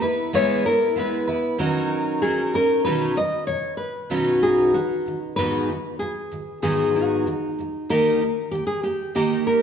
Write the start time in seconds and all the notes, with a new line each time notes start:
0.02 B3 E4 B4
0.33 C#3 G#3 B3 E4 B4 C#5
0.66 B3 E4 A#4
0.96 G#3 B3 E4 B4
1.27 B3 E4 B4
1.58 D#3 F#3 C#4 D#4 F#4 A#4
2.22 F#3 C#4 D#4 G#4 A#4
2.54 C#4 D#4 A#4
2.85 B2 D#3 F#3 C#4 D#4 B4
3.16 B2 D#3 F#3 D#5
3.47 B2 D#3 F#3 C#5
3.77 B4
4.10 B2 D#3 F#3 C#4 D#4 B4
4.43 G#4
4.74 B2 D#3 F#3 F#4
5.06 G#2 D#3 F#3
5.36 G#2 D#3 F#3 B3 D#4 G#4 B4
5.69 G#2 D#3 F#3
5.99 G#2 D#3 F#3 G#4
6.32 G#2 D#3 F#3
6.62 G#2 D#3 F#3 B3 D#4 G#4
6.95 F#4
7.26 G#2 D#3 F#3
7.59 G#2 D#3 F#3
7.89 D#3 A#3 D#4 G4 A#4
8.22 D#3 A#3
8.51 D#3 A#3 G4
8.67 G#4
8.83 D#3 A#3 G4
9.15 D#3 A#3 D#4 G4 A#4
9.47 A#4